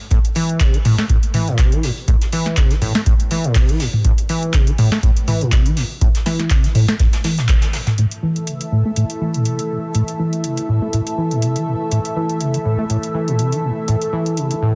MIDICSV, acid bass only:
0, 0, Header, 1, 2, 480
1, 0, Start_track
1, 0, Key_signature, 0, "minor"
1, 0, Tempo, 491803
1, 109, Time_signature, 4, 2, 24, 8
1, 14397, End_track
2, 0, Start_track
2, 0, Title_t, "Acid bass"
2, 0, Program_c, 0, 38
2, 109, Note_on_c, 0, 45, 80
2, 182, Note_off_c, 0, 45, 0
2, 349, Note_on_c, 0, 52, 78
2, 590, Note_on_c, 0, 48, 82
2, 604, Note_off_c, 0, 52, 0
2, 723, Note_on_c, 0, 52, 78
2, 738, Note_off_c, 0, 48, 0
2, 758, Note_off_c, 0, 52, 0
2, 830, Note_on_c, 0, 45, 77
2, 938, Note_off_c, 0, 45, 0
2, 963, Note_on_c, 0, 57, 77
2, 1021, Note_off_c, 0, 57, 0
2, 1071, Note_on_c, 0, 45, 82
2, 1143, Note_off_c, 0, 45, 0
2, 1312, Note_on_c, 0, 52, 76
2, 1443, Note_on_c, 0, 45, 76
2, 1458, Note_off_c, 0, 52, 0
2, 1552, Note_on_c, 0, 48, 84
2, 1566, Note_off_c, 0, 45, 0
2, 1684, Note_on_c, 0, 52, 76
2, 1698, Note_off_c, 0, 48, 0
2, 1791, Note_on_c, 0, 45, 76
2, 1806, Note_off_c, 0, 52, 0
2, 1863, Note_off_c, 0, 45, 0
2, 2031, Note_on_c, 0, 45, 82
2, 2103, Note_off_c, 0, 45, 0
2, 2271, Note_on_c, 0, 52, 79
2, 2511, Note_on_c, 0, 48, 79
2, 2525, Note_off_c, 0, 52, 0
2, 2641, Note_on_c, 0, 52, 75
2, 2656, Note_off_c, 0, 48, 0
2, 2677, Note_off_c, 0, 52, 0
2, 2750, Note_on_c, 0, 45, 77
2, 2858, Note_off_c, 0, 45, 0
2, 2883, Note_on_c, 0, 57, 76
2, 2942, Note_off_c, 0, 57, 0
2, 2990, Note_on_c, 0, 45, 83
2, 3062, Note_off_c, 0, 45, 0
2, 3230, Note_on_c, 0, 52, 75
2, 3362, Note_on_c, 0, 45, 77
2, 3376, Note_off_c, 0, 52, 0
2, 3469, Note_on_c, 0, 48, 86
2, 3484, Note_off_c, 0, 45, 0
2, 3601, Note_on_c, 0, 52, 80
2, 3615, Note_off_c, 0, 48, 0
2, 3710, Note_on_c, 0, 45, 76
2, 3725, Note_off_c, 0, 52, 0
2, 3782, Note_off_c, 0, 45, 0
2, 3950, Note_on_c, 0, 45, 83
2, 4022, Note_off_c, 0, 45, 0
2, 4191, Note_on_c, 0, 52, 78
2, 4431, Note_on_c, 0, 48, 80
2, 4446, Note_off_c, 0, 52, 0
2, 4563, Note_on_c, 0, 52, 78
2, 4577, Note_off_c, 0, 48, 0
2, 4598, Note_off_c, 0, 52, 0
2, 4672, Note_on_c, 0, 45, 78
2, 4779, Note_off_c, 0, 45, 0
2, 4803, Note_on_c, 0, 57, 76
2, 4862, Note_off_c, 0, 57, 0
2, 4910, Note_on_c, 0, 45, 84
2, 4982, Note_off_c, 0, 45, 0
2, 5151, Note_on_c, 0, 52, 76
2, 5282, Note_on_c, 0, 45, 79
2, 5297, Note_off_c, 0, 52, 0
2, 5389, Note_on_c, 0, 48, 87
2, 5403, Note_off_c, 0, 45, 0
2, 5521, Note_on_c, 0, 52, 78
2, 5536, Note_off_c, 0, 48, 0
2, 5628, Note_on_c, 0, 45, 78
2, 5642, Note_off_c, 0, 52, 0
2, 5701, Note_off_c, 0, 45, 0
2, 5868, Note_on_c, 0, 45, 84
2, 5941, Note_off_c, 0, 45, 0
2, 6107, Note_on_c, 0, 52, 78
2, 6347, Note_on_c, 0, 48, 83
2, 6361, Note_off_c, 0, 52, 0
2, 6479, Note_on_c, 0, 52, 79
2, 6494, Note_off_c, 0, 48, 0
2, 6516, Note_off_c, 0, 52, 0
2, 6587, Note_on_c, 0, 45, 80
2, 6697, Note_off_c, 0, 45, 0
2, 6719, Note_on_c, 0, 57, 76
2, 6780, Note_off_c, 0, 57, 0
2, 6827, Note_on_c, 0, 45, 83
2, 6900, Note_off_c, 0, 45, 0
2, 7068, Note_on_c, 0, 52, 76
2, 7200, Note_on_c, 0, 45, 79
2, 7215, Note_off_c, 0, 52, 0
2, 7308, Note_on_c, 0, 48, 83
2, 7323, Note_off_c, 0, 45, 0
2, 7442, Note_on_c, 0, 52, 79
2, 7456, Note_off_c, 0, 48, 0
2, 7550, Note_on_c, 0, 45, 78
2, 7564, Note_off_c, 0, 52, 0
2, 7622, Note_off_c, 0, 45, 0
2, 7790, Note_on_c, 0, 45, 80
2, 7862, Note_off_c, 0, 45, 0
2, 8029, Note_on_c, 0, 52, 75
2, 8270, Note_on_c, 0, 48, 76
2, 8284, Note_off_c, 0, 52, 0
2, 8402, Note_on_c, 0, 52, 75
2, 8417, Note_off_c, 0, 48, 0
2, 8438, Note_off_c, 0, 52, 0
2, 8510, Note_on_c, 0, 45, 75
2, 8618, Note_off_c, 0, 45, 0
2, 8641, Note_on_c, 0, 57, 75
2, 8701, Note_off_c, 0, 57, 0
2, 8750, Note_on_c, 0, 45, 81
2, 8822, Note_off_c, 0, 45, 0
2, 8990, Note_on_c, 0, 52, 72
2, 9121, Note_on_c, 0, 45, 74
2, 9136, Note_off_c, 0, 52, 0
2, 9227, Note_on_c, 0, 48, 80
2, 9242, Note_off_c, 0, 45, 0
2, 9360, Note_on_c, 0, 52, 78
2, 9375, Note_off_c, 0, 48, 0
2, 9468, Note_on_c, 0, 45, 74
2, 9482, Note_off_c, 0, 52, 0
2, 9541, Note_off_c, 0, 45, 0
2, 9707, Note_on_c, 0, 45, 82
2, 9781, Note_off_c, 0, 45, 0
2, 9948, Note_on_c, 0, 52, 74
2, 10189, Note_on_c, 0, 48, 79
2, 10204, Note_off_c, 0, 52, 0
2, 10321, Note_on_c, 0, 52, 72
2, 10336, Note_off_c, 0, 48, 0
2, 10357, Note_off_c, 0, 52, 0
2, 10430, Note_on_c, 0, 45, 78
2, 10538, Note_off_c, 0, 45, 0
2, 10561, Note_on_c, 0, 57, 72
2, 10620, Note_off_c, 0, 57, 0
2, 10669, Note_on_c, 0, 45, 80
2, 10741, Note_off_c, 0, 45, 0
2, 10909, Note_on_c, 0, 52, 73
2, 11042, Note_on_c, 0, 45, 73
2, 11057, Note_off_c, 0, 52, 0
2, 11150, Note_on_c, 0, 48, 78
2, 11165, Note_off_c, 0, 45, 0
2, 11281, Note_on_c, 0, 52, 75
2, 11296, Note_off_c, 0, 48, 0
2, 11390, Note_on_c, 0, 45, 76
2, 11404, Note_off_c, 0, 52, 0
2, 11462, Note_off_c, 0, 45, 0
2, 11631, Note_on_c, 0, 45, 79
2, 11703, Note_off_c, 0, 45, 0
2, 11870, Note_on_c, 0, 52, 75
2, 12110, Note_on_c, 0, 48, 78
2, 12124, Note_off_c, 0, 52, 0
2, 12241, Note_on_c, 0, 52, 75
2, 12256, Note_off_c, 0, 48, 0
2, 12277, Note_off_c, 0, 52, 0
2, 12350, Note_on_c, 0, 45, 77
2, 12458, Note_off_c, 0, 45, 0
2, 12479, Note_on_c, 0, 57, 74
2, 12540, Note_off_c, 0, 57, 0
2, 12588, Note_on_c, 0, 45, 83
2, 12661, Note_off_c, 0, 45, 0
2, 12827, Note_on_c, 0, 52, 74
2, 12959, Note_on_c, 0, 45, 76
2, 12973, Note_off_c, 0, 52, 0
2, 13068, Note_on_c, 0, 48, 82
2, 13082, Note_off_c, 0, 45, 0
2, 13199, Note_on_c, 0, 52, 76
2, 13214, Note_off_c, 0, 48, 0
2, 13307, Note_on_c, 0, 45, 75
2, 13322, Note_off_c, 0, 52, 0
2, 13381, Note_off_c, 0, 45, 0
2, 13548, Note_on_c, 0, 45, 80
2, 13621, Note_off_c, 0, 45, 0
2, 13787, Note_on_c, 0, 52, 76
2, 14028, Note_on_c, 0, 48, 80
2, 14042, Note_off_c, 0, 52, 0
2, 14159, Note_on_c, 0, 52, 72
2, 14174, Note_off_c, 0, 48, 0
2, 14196, Note_off_c, 0, 52, 0
2, 14268, Note_on_c, 0, 45, 74
2, 14377, Note_off_c, 0, 45, 0
2, 14397, End_track
0, 0, End_of_file